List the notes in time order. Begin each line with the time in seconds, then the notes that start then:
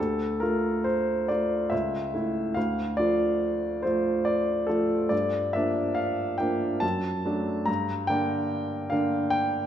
Already playing: D2 A4
0.40 A3 F4 A#4
0.84 C5
1.28 A3 F4 D5
1.70 C#2 E5
2.14 A3 E4
2.54 D2 F5
2.97 F3 A3 F4 D5
3.83 F3 A3 F4 C5
4.25 D5
4.67 F3 A3 F4 A4
5.09 G2 D5
5.53 F3 A#3 D4 E5
5.95 F5
6.38 F3 A#3 D4 G5
6.80 F#2 A5
7.25 F#3 A3 D4
7.66 G2 A#5
8.07 D3 A#3 D4 G5
8.90 D3 A#3 D4 F5
9.30 G5